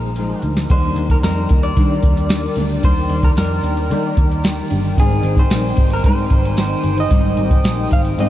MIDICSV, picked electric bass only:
0, 0, Header, 1, 2, 480
1, 0, Start_track
1, 0, Key_signature, -3, "major"
1, 0, Tempo, 533808
1, 635, Time_signature, 4, 2, 24, 8
1, 7455, End_track
2, 0, Start_track
2, 0, Title_t, "Picked electric bass"
2, 0, Program_c, 0, 34
2, 0, Note_on_c, 0, 34, 73
2, 295, Note_off_c, 0, 34, 0
2, 389, Note_on_c, 0, 38, 88
2, 584, Note_off_c, 0, 38, 0
2, 632, Note_on_c, 0, 39, 97
2, 825, Note_off_c, 0, 39, 0
2, 862, Note_on_c, 0, 39, 102
2, 1059, Note_off_c, 0, 39, 0
2, 1108, Note_on_c, 0, 41, 104
2, 1303, Note_off_c, 0, 41, 0
2, 1354, Note_on_c, 0, 39, 85
2, 1547, Note_off_c, 0, 39, 0
2, 1592, Note_on_c, 0, 51, 114
2, 1786, Note_off_c, 0, 51, 0
2, 1829, Note_on_c, 0, 39, 88
2, 2216, Note_off_c, 0, 39, 0
2, 2311, Note_on_c, 0, 38, 99
2, 2505, Note_off_c, 0, 38, 0
2, 2551, Note_on_c, 0, 39, 112
2, 2745, Note_off_c, 0, 39, 0
2, 2782, Note_on_c, 0, 39, 98
2, 2980, Note_off_c, 0, 39, 0
2, 3029, Note_on_c, 0, 41, 87
2, 3224, Note_off_c, 0, 41, 0
2, 3265, Note_on_c, 0, 39, 90
2, 3509, Note_on_c, 0, 51, 104
2, 3522, Note_off_c, 0, 39, 0
2, 3704, Note_off_c, 0, 51, 0
2, 3751, Note_on_c, 0, 39, 92
2, 4137, Note_off_c, 0, 39, 0
2, 4242, Note_on_c, 0, 31, 95
2, 4432, Note_off_c, 0, 31, 0
2, 4472, Note_on_c, 0, 32, 100
2, 4666, Note_off_c, 0, 32, 0
2, 4703, Note_on_c, 0, 32, 102
2, 4900, Note_off_c, 0, 32, 0
2, 4945, Note_on_c, 0, 34, 88
2, 5141, Note_off_c, 0, 34, 0
2, 5197, Note_on_c, 0, 32, 95
2, 5388, Note_off_c, 0, 32, 0
2, 5431, Note_on_c, 0, 44, 103
2, 5625, Note_off_c, 0, 44, 0
2, 5672, Note_on_c, 0, 32, 92
2, 6057, Note_off_c, 0, 32, 0
2, 6152, Note_on_c, 0, 31, 92
2, 6346, Note_off_c, 0, 31, 0
2, 6391, Note_on_c, 0, 32, 103
2, 6585, Note_off_c, 0, 32, 0
2, 6629, Note_on_c, 0, 32, 107
2, 6824, Note_off_c, 0, 32, 0
2, 6868, Note_on_c, 0, 34, 94
2, 7063, Note_off_c, 0, 34, 0
2, 7116, Note_on_c, 0, 32, 87
2, 7308, Note_off_c, 0, 32, 0
2, 7356, Note_on_c, 0, 44, 103
2, 7455, Note_off_c, 0, 44, 0
2, 7455, End_track
0, 0, End_of_file